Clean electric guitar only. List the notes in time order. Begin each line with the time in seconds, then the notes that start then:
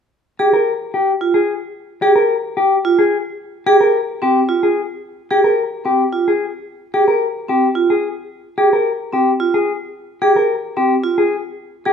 0.40 G4
0.53 A#4
0.94 G4
1.34 G#4
2.02 G4
2.16 A#4
2.57 G4
2.99 G#4
3.66 G4
3.81 A#4
4.22 G4
4.63 G#4
5.31 G4
5.44 A#4
5.86 G4
6.28 G#4
6.94 G4
7.08 A#4
7.49 G4
7.90 G#4
8.58 G4
8.73 A#4
9.13 G4
9.54 G#4
10.22 G4
10.36 A#4
10.77 G4
11.18 G#4
11.86 G4